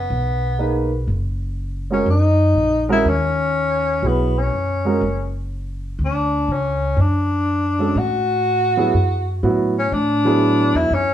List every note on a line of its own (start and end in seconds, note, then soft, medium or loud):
0.00 0.88 B3 medium
0.10 1.04 B1 medium
0.59 0.88 A#3 soft
0.59 0.89 D#4 soft
0.59 0.89 G#4 soft
0.59 0.89 B4 medium
1.07 2.02 F#1 medium
1.90 2.05 G#3 soft
1.90 2.05 C#4 soft
1.90 2.07 C#4 medium
1.90 2.06 F#4 soft
1.90 2.06 A#4 medium
2.06 2.52 F#2 medium
2.10 2.86 D#4 medium
2.55 3.01 A#1 medium
2.89 3.03 G#3 medium
2.89 3.04 C#4 medium
2.89 3.10 E4 medium
2.89 3.04 F#4 medium
2.89 3.04 A#4 medium
3.05 3.99 D#2 medium
3.09 4.08 C#4 medium
4.02 4.48 B1 medium
4.02 4.32 F#3 soft
4.02 4.33 B3 soft
4.02 4.33 E4 soft
4.02 4.33 G#4 soft
4.07 4.40 B3 medium
4.39 5.35 C#4 medium
4.52 4.98 F#2 medium
4.85 5.00 G#3 medium
4.85 5.00 C#4 medium
4.85 5.00 F#4 soft
4.85 5.00 A#4 medium
5.01 5.95 F#1 medium
5.99 6.45 D2 medium
6.05 6.54 D4 medium
6.48 6.94 C#2 medium
6.52 7.02 C#4 medium
6.97 7.92 F#2 medium
7.01 7.99 D4 medium
7.79 7.94 G#3 soft
7.79 7.94 C#4 soft
7.79 7.95 F#4 soft
7.79 7.95 A4 medium
7.95 8.90 A2 medium
7.95 9.44 F#4 medium
8.77 8.92 F#3 medium
8.77 8.92 B3 medium
8.77 8.93 E4 medium
8.77 8.93 G#4 medium
8.94 9.40 F#2 medium
9.43 9.89 A2 medium
9.43 9.73 F#3 medium
9.43 9.73 B3 soft
9.43 9.73 E4 medium
9.43 9.74 F#4 medium
9.79 9.95 C#4 medium
9.92 10.70 A2 medium
9.92 10.78 D4 loud
10.25 10.87 F#3 medium
10.25 10.88 B3 medium
10.25 10.88 E4 medium
10.25 10.88 G#4 medium
10.74 10.90 E2 medium
10.74 10.96 E4 medium
10.91 11.14 F#2 medium
10.91 11.14 C#4 medium